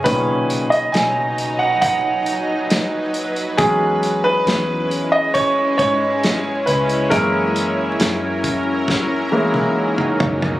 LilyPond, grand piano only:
<<
  \new Staff \with { instrumentName = "Grand piano" } { \time 4/4 \key b \major \tempo 4 = 68 b'8. dis''16 gis''8. fis''16 fis''8. r4 r16 | gis'8. b'4 dis''16 cis''8 cis''4 b'8 | ais'2. r4 | }
  \new Staff \with { instrumentName = "Grand piano" } { \clef bass \time 4/4 \key b \major <ais, dis cis'>8 r2. r8 | <fis gis cis'>4. r2 r8 | <e gis ais>2~ <e gis ais>8 <e gis ais>8 r4 | }
>>